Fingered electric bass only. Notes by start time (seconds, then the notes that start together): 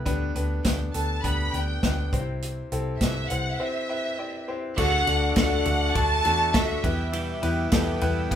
0.06 D2
0.35 D2
0.65 D2
0.95 D2
1.24 D2
1.54 D2
1.83 D2
2.13 C2
2.72 C2
3.01 C2
3.31 C2
4.78 D2
5.07 D2
5.37 D2
5.66 D2
5.95 D2
6.25 E2
6.54 D2
6.84 E2
7.43 E2
7.72 E2
8.02 E2
8.31 E2